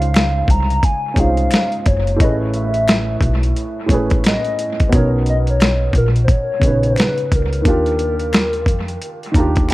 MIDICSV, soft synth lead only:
0, 0, Header, 1, 2, 480
1, 0, Start_track
1, 0, Tempo, 681818
1, 1549, Time_signature, 4, 2, 24, 8
1, 6856, End_track
2, 0, Start_track
2, 0, Title_t, "Soft synth lead"
2, 0, Program_c, 0, 80
2, 0, Note_on_c, 0, 77, 105
2, 354, Note_on_c, 0, 82, 113
2, 364, Note_off_c, 0, 77, 0
2, 595, Note_on_c, 0, 80, 108
2, 605, Note_off_c, 0, 82, 0
2, 841, Note_on_c, 0, 77, 114
2, 852, Note_off_c, 0, 80, 0
2, 1318, Note_on_c, 0, 73, 89
2, 1329, Note_off_c, 0, 77, 0
2, 1554, Note_off_c, 0, 73, 0
2, 1559, Note_on_c, 0, 75, 86
2, 1658, Note_off_c, 0, 75, 0
2, 1799, Note_on_c, 0, 76, 106
2, 2486, Note_off_c, 0, 76, 0
2, 3002, Note_on_c, 0, 75, 120
2, 3447, Note_off_c, 0, 75, 0
2, 3483, Note_on_c, 0, 73, 90
2, 3582, Note_off_c, 0, 73, 0
2, 3726, Note_on_c, 0, 75, 101
2, 3787, Note_off_c, 0, 75, 0
2, 3869, Note_on_c, 0, 73, 96
2, 4174, Note_off_c, 0, 73, 0
2, 4205, Note_on_c, 0, 70, 90
2, 4292, Note_off_c, 0, 70, 0
2, 4393, Note_on_c, 0, 72, 64
2, 4441, Note_on_c, 0, 73, 116
2, 4452, Note_off_c, 0, 72, 0
2, 4834, Note_on_c, 0, 71, 101
2, 4845, Note_off_c, 0, 73, 0
2, 5176, Note_on_c, 0, 70, 97
2, 5187, Note_off_c, 0, 71, 0
2, 6842, Note_off_c, 0, 70, 0
2, 6856, End_track
0, 0, End_of_file